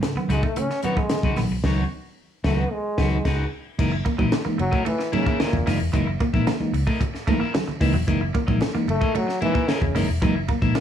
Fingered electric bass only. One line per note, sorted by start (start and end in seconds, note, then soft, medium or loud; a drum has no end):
0.15 muted fingered electric bass stroke soft
0.28 0.40 C#2 loud
1.23 1.35 B1 medium
1.36 1.48 A#1 loud
1.50 1.61 B1 medium
1.64 1.82 C#2 medium
2.44 2.63 C#2 loud
2.98 3.17 C#2 loud
3.25 3.43 C#2 loud
3.79 4.01 F#1 loud
4.19 4.30 A#1 medium
4.45 muted fingered electric bass stroke soft
4.59 4.70 F#1 medium
5.53 5.64 E1 loud
5.66 5.79 F#1 medium
5.79 5.91 E1 medium
5.94 6.15 F#1 medium
6.34 6.45 A#1 medium
6.60 muted fingered electric bass stroke soft
6.73 6.84 C#2 medium
7.81 7.92 C#2 loud
7.94 8.05 E1 loud
8.08 8.30 F#1 medium
8.48 8.59 A#1 loud
8.75 muted fingered electric bass stroke medium
8.88 8.99 F#1 medium
9.82 9.93 E1 medium
9.95 10.06 F#1 loud
10.08 10.22 E1 medium
10.22 10.55 F#1 loud
10.62 10.73 A#1 loud